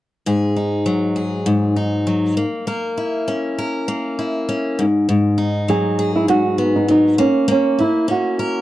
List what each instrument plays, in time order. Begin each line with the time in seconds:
0.26 steel-string acoustic guitar G#2 G#4
0.56 steel-string acoustic guitar D#4
0.86 steel-string acoustic guitar F#3
1.16 steel-string acoustic guitar G#4
1.46 steel-string acoustic guitar G#2
1.76 steel-string acoustic guitar D#4
2.07 steel-string acoustic guitar F#3
2.37 steel-string acoustic guitar A#3
2.67 steel-string acoustic guitar A#3 A#4
2.98 steel-string acoustic guitar E4
3.28 steel-string acoustic guitar C#4
3.59 steel-string acoustic guitar A#4
3.88 steel-string acoustic guitar A#3
4.19 steel-string acoustic guitar E4
4.49 steel-string acoustic guitar C#4
4.79 steel-string acoustic guitar G#2
5.09 steel-string acoustic guitar G#2
5.38 steel-string acoustic guitar D#4
5.68 steel-string acoustic guitar F#3, nylon-string guitar G#4
5.99 steel-string acoustic guitar G#4
6.16 nylon-string guitar E4
6.28 steel-string acoustic guitar G#2, nylon-string guitar F#4
6.58 steel-string acoustic guitar B3
6.76 nylon-string guitar D#4
6.88 steel-string acoustic guitar F#3, nylon-string guitar D#4
7.18 steel-string acoustic guitar A#3, nylon-string guitar C#4
7.48 steel-string acoustic guitar A#3, nylon-string guitar C#4
7.79 steel-string acoustic guitar E4, nylon-string guitar E4
8.08 steel-string acoustic guitar C#4, nylon-string guitar F#4
8.39 steel-string acoustic guitar A#4